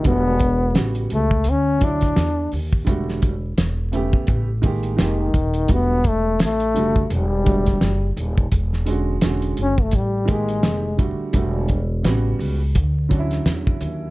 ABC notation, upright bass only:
X:1
M:4/4
L:1/16
Q:"Swing 16ths" 1/4=85
K:Edor
V:1 name="Upright bass" clef=bass
E,,,4 A,,,2 C,,2 D,,4 E,,2 ^D,,2 | E,,,4 E,,,3 z A,,,4 =F,,,2 _E,,,2 | E,,,4 A,,,2 F,,,2 E,,,4 F,,,2 ^D,,,2 | E,,,4 E,,,2 F,,,2 A,,,4 =F,,,3 z |
E,,,4 A,,,2 C,,2 D,,4 E,,2 ^D,,2 |]